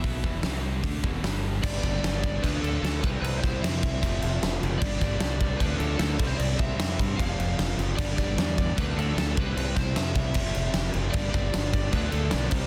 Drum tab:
CC |--------|xxxxxxxx|xxxxxxxx|xxxxxxxx|
HH |o-o-o-o-|--------|--------|--------|
SD |--o---o-|-oo---o-|--o---o-|-oo---o-|
BD |oo--oo--|oo-oo--o|-o-oo---|oo-oo--o|

CC |xxxxxxxx|xxxxxxxx|xxxxxxxx|xxxxxxxx|
HH |--------|--------|--------|--------|
SD |--o---o-|-oo---o-|-oo---o-|--o---o-|
BD |-o-oo---|oo-oo--o|-o-oo---|oo-oo--o|